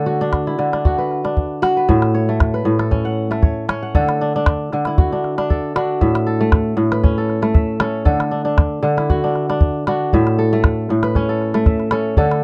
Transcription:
0.00 0.57 D3 medium
0.00 1.16 A3 medium
0.00 1.12 A4 medium
0.00 0.27 C#5 medium
0.00 0.65 F#5 medium
0.06 0.85 F#4 medium
0.21 0.72 D4 medium
0.33 calabash thump medium
0.33 calabash click medium
0.47 2.04 E4 medium
0.59 1.93 D3 medium
0.59 calabash click soft
0.73 1.24 D4 medium
0.73 calabash click soft
0.85 1.62 F#4 medium
0.85 calabash thump medium
0.98 1.76 B4 medium
1.11 calabash click soft
1.24 2.20 D4 medium
1.24 calabash click soft
1.37 calabash thump medium
1.62 3.09 F#4 medium
1.62 calabash click medium
1.77 2.54 B4 medium
1.89 2.64 A2 medium
1.89 2.92 E5 medium
1.89 calabash thump medium
2.02 calabash click soft
2.14 3.29 C#5 medium
2.29 3.30 A3 medium
2.40 calabash thump medium
2.40 calabash click medium
2.54 3.77 B4 medium
2.54 calabash click soft
2.65 4.00 A2 medium
2.79 3.95 A4 medium
2.79 calabash click soft
2.91 3.68 C#4 medium
2.91 calabash thump medium
3.05 3.82 F#5 medium
3.31 5.30 A3 medium
3.31 calabash click soft
3.42 3.68 C#5 medium
3.42 calabash thump medium
3.42 calabash click soft
3.69 4.01 C#4 medium
3.69 4.27 C#5 medium
3.69 calabash click medium
3.83 4.79 F#5 medium
3.95 4.72 D3 medium
3.95 5.27 A4 medium
3.95 calabash thump medium
4.09 calabash click medium
4.21 4.35 D4 medium
4.36 5.12 D4 medium
4.46 calabash thump medium
4.46 calabash click medium
4.73 6.06 D3 medium
4.73 calabash click soft
4.85 6.44 E4 medium
4.85 calabash click medium
4.98 5.75 F#4 medium
4.98 calabash thump medium
5.12 5.37 D4 medium
5.24 calabash click soft
5.38 5.76 D4 medium
5.38 calabash click medium
5.50 6.26 A4 medium
5.50 calabash thump medium
5.76 7.09 D4 medium
5.76 7.22 F#4 medium
5.76 calabash click medium
6.01 6.76 A2 medium
6.01 7.04 E5 medium
6.01 calabash thump medium
6.15 calabash click medium
6.27 7.17 A4 medium
6.41 7.42 A3 medium
6.52 calabash thump medium
6.52 calabash click medium
6.77 8.12 A2 medium
6.77 calabash click soft
6.92 8.15 B4 medium
6.92 calabash click medium
7.03 7.80 C#4 medium
7.03 calabash thump medium
7.18 7.80 A4 medium
7.30 calabash click soft
7.42 9.42 A3 medium
7.42 calabash click medium
7.54 8.58 E5 medium
7.54 calabash thump medium
7.80 8.12 C#4 medium
7.80 8.05 A4 medium
7.80 calabash click medium
8.05 8.81 D3 medium
8.05 9.37 A4 medium
8.05 calabash thump medium
8.20 calabash click medium
8.31 8.44 D4 medium
8.45 9.23 D4 medium
8.58 calabash thump medium
8.58 calabash click medium
8.83 10.17 D3 medium
8.83 calabash click soft
8.97 10.54 E4 medium
8.97 calabash click soft
9.10 9.87 F#4 medium
9.10 calabash thump medium
9.24 9.49 D4 medium
9.35 calabash click soft
9.49 9.87 D4 medium
9.49 calabash click soft
9.61 calabash thump medium
9.87 11.22 D4 medium
9.87 11.34 F#4 medium
9.87 calabash click medium
10.13 10.89 A2 medium
10.13 11.17 E5 medium
10.13 calabash thump medium
10.27 calabash click soft
10.39 11.29 A4 medium
10.53 11.54 A3 medium
10.64 calabash thump medium
10.64 calabash click medium
10.89 12.23 A2 medium
10.89 calabash click soft
11.03 12.27 B4 medium
11.03 calabash click medium
11.15 11.92 C#4 medium
11.15 calabash thump medium
11.15 calabash click soft
11.29 11.92 A4 medium
11.42 calabash click soft
11.54 12.44 A3 medium
11.54 calabash click soft
11.66 12.44 E5 medium
11.66 calabash thump medium
11.66 calabash click soft
11.80 calabash click soft
11.91 12.24 C#4 medium
11.91 12.17 A4 medium
11.91 calabash click medium
12.17 12.44 D3 loud
12.17 12.44 A4 medium
12.17 calabash thump medium
12.31 calabash click medium

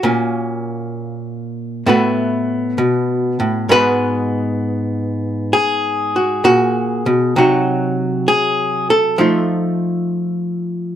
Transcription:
0.00 1.83 A#2 medium
0.00 1.83 A#3 soft
0.00 1.87 F#4 medium
0.05 1.83 C#4 soft
1.86 2.78 A2 medium
1.86 3.66 A3 soft
1.86 3.70 B3 soft
1.86 3.72 F#4 soft
1.86 3.67 B4 soft
2.78 3.39 B2 medium
3.40 3.69 A2 medium
3.69 6.44 G#2 medium
3.69 7.32 G#3 soft
3.69 6.15 B3 soft
3.69 6.15 F#4 soft
3.69 5.53 B4 loud
5.53 7.36 G#4 medium
6.16 6.44 F#4 soft
6.44 7.06 A#2 medium
6.44 7.36 F#4 medium
7.06 7.36 B2 medium
7.36 9.16 C3 medium
7.36 9.18 F#3 soft
7.36 9.16 D#4 soft
7.36 9.20 F#4 medium
8.28 8.89 G#4 medium
8.90 10.96 A4 medium
9.18 10.96 F3 medium
9.18 10.96 A3 soft
9.18 10.96 D#4 soft
9.18 10.96 F4 soft

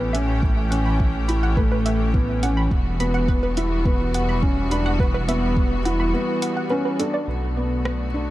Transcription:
0.00 2.68 A1 medium
0.00 2.67 E3 medium
0.00 2.67 A3 medium
0.00 0.11 B3 medium
0.00 2.67 C#4 medium
0.00 2.67 G4 medium
0.13 0.39 C#4 medium
0.13 0.19 E5 medium
0.13 closed hi-hat medium
0.43 kick medium
0.71 1.21 C#4 medium
0.71 0.79 F#5 medium
0.71 closed hi-hat medium
0.86 0.91 B5 medium
1.00 kick medium
1.28 1.54 E4 medium
1.28 1.34 B5 medium
1.28 closed hi-hat medium
1.43 1.48 F#5 medium
1.57 2.07 A3 medium
1.57 1.63 B4 medium
1.57 kick medium
1.72 1.77 B4 medium
1.86 1.91 E5 medium
1.86 closed hi-hat medium
2.14 2.39 B3 medium
2.14 kick medium
2.43 2.68 C#4 medium
2.43 2.51 F#5 medium
2.43 closed hi-hat medium
2.57 2.63 B5 medium
2.71 6.14 E1 medium
2.71 7.25 E3 medium
2.71 7.25 G3 medium
2.71 7.25 B3 medium
2.71 7.25 F#4 medium
2.71 kick medium
3.00 3.50 B3 medium
3.00 3.05 B5 medium
3.00 closed hi-hat medium
3.14 3.20 F#5 medium
3.28 3.34 B4 loud
3.28 kick medium
3.43 3.48 B4 medium
3.57 3.82 E4 medium
3.57 3.63 E5 medium
3.57 closed hi-hat medium
3.85 4.36 B3 medium
3.85 kick loud
4.14 4.23 F#5 medium
4.14 closed hi-hat medium
4.29 4.34 B5 medium
4.43 4.68 C#4 medium
4.43 kick medium
4.71 4.96 D4 medium
4.71 4.77 B5 medium
4.71 closed hi-hat medium
4.86 4.91 F#5 loud
5.00 5.06 B4 medium
5.00 kick medium
5.14 5.20 B4 medium
5.28 5.78 B3 medium
5.28 5.34 E5 medium
5.28 closed hi-hat medium
5.57 kick medium
5.85 6.11 E4 medium
5.85 5.94 F#5 medium
5.85 closed hi-hat medium
6.00 6.05 B5 medium
6.14 6.64 B3 medium
6.42 6.48 F#5 medium
6.42 closed hi-hat medium
6.57 6.62 F#5 medium
6.70 6.96 C#4 medium
6.70 6.76 B4 medium
6.85 6.89 B4 medium
6.99 7.25 D4 medium
6.99 7.03 A4 medium
6.99 closed hi-hat medium
7.14 7.17 D5 medium
7.27 8.30 B1 medium
7.27 8.30 D3 medium
7.27 8.30 A3 medium
7.27 8.30 B3 medium
7.27 8.30 F#4 medium
7.57 8.07 B3 medium
7.85 cross-stick medium
8.14 8.30 D4 medium

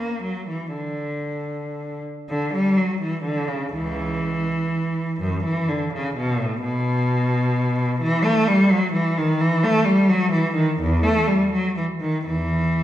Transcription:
0.00 0.22 A#3 medium
0.23 0.48 F#3 medium
0.48 0.74 E3 medium
0.73 2.02 D3 medium
2.30 2.52 D3 medium
2.54 2.78 G3 medium
2.77 3.01 F#3 medium
3.01 3.25 E3 medium
3.24 3.48 D3 medium
3.48 3.72 C#3 medium
3.72 4.40 C#2 medium
3.72 5.17 E3 medium
5.21 5.44 F#2 medium
5.44 5.68 E3 medium
5.69 5.92 D3 medium
5.93 6.16 C#3 medium
6.16 6.39 B2 medium
6.39 6.62 A2 medium
6.61 7.98 B2 medium
8.01 8.24 E3 loud
8.24 8.47 A3 medium
8.48 8.71 G3 medium
8.71 8.94 F#3 medium
8.93 9.16 E3 medium
9.18 9.40 D#3 medium
9.41 9.63 E3 loud
9.64 9.86 A3 medium
9.85 10.08 G3 medium
10.09 10.32 F#3 medium
10.32 10.55 E3 medium
10.55 10.78 D#3 medium
10.80 11.03 E2 medium
11.03 11.27 A3 medium
11.27 11.51 G3 medium
11.52 11.76 F#3 medium
11.77 11.85 E3 medium
12.01 12.25 D#3 medium
12.26 12.83 E2 medium
12.26 12.83 E3 medium

